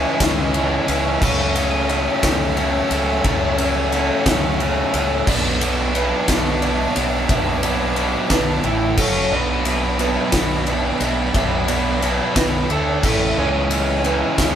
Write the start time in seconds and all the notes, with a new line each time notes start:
Already playing: C#3 E3 G#3 C#4 B4 E5 C#6
0.20 C#2 C#3 E3 G#3 C#4, kick, snare, ride
0.54 C#3 E3 G#3 C#4, ride
0.88 C#2 C#3 E3 G#3 C#4, ride
1.21 C#2 C#3 F#3 A3 C#4 A4 F#5 E6, kick, crash
1.55 C#3 F#3 A3 C#4, ride
1.89 C#3 F#3 A3 C#4, ride
2.22 C#2 C#3 F#3 A3 C#4, kick, snare, ride
2.56 C#3 F#3 A3 C#4, ride
2.89 C#2 C#3 F#3 A3 C#4, ride
3.23 C#2 C#3 F#3 A3 C#4 F#6, kick, ride
3.57 C#3 F#3 A3 C#4, ride
3.90 C#3 F#3 A3 C#4, ride
4.25 C#2 C#3 F#3 A3 C#4, kick, snare, ride
4.59 C#3 F#3 A3 C#4, ride
4.93 C#2 C#3 F#3 A3 C#4, ride
5.26 B1 B2 F#3 B3 D4 B4 D5 A5 D6, kick, crash
5.60 B2 F#3 B3 D4, ride
5.94 B2 F#3 B3 D4 B4, ride
6.28 B1 B2 F#3 B3 D4, kick, snare, ride
6.61 B2 F#3 B3 D4 D5, ride
6.95 B1 B2 F#3 B3 D4, ride
7.29 B1 B2 F#3 B3 D4 E5, kick, ride
7.63 B2 F#3 B3 D4 D5, ride
7.96 B2 F#3 B3 D4, ride
8.30 B1 B2 F#3 B3 D4 B4, kick, snare, ride
8.64 A1 A2 E3 A3 E4, ride
8.97 F#1 F#3 C#4 F#4 A4 C#5, kick, crash
9.31 B1 B2 F#3 B3 D4 F#4 A4 B4 D5 B5
9.65 B2 F#3 B3 D4 F#4 B4, ride
9.99 B2 F#3 B3 D4 F#4 B4, ride
10.32 B1 B2 F#3 B3 D4 F#4, kick, snare, ride
10.36 B4
10.67 B2 F#3 B3 D4 F#4 B4 D5, ride
11.00 B1 B2 F#3 B3 D4 F#4 B4, ride
11.34 B1 B2 F#3 B3 D4 F#4 B4 E5, kick, ride
11.68 B2 F#3 B3 D4 F#4 B4 D5, ride
12.02 B2 F#3 B3 D4 F#4 B4, ride
12.35 B1 B2 F#3 B3 D4 F#4 B4, kick, snare, ride
12.69 D2 D3 A3 D4 A4, ride
13.03 A1 A2 E3 A3 E4 A4 E5, kick, crash
13.35 C#2 C#3 E3 B4 C#5 C#6
13.39 G#3 C#4
13.71 C#3 E3 G#3 C#4, ride
14.04 C#3 E3 G#3 C#4 B4, ride
14.38 C#2 C#3 E3 G#3 C#4, kick, snare, ride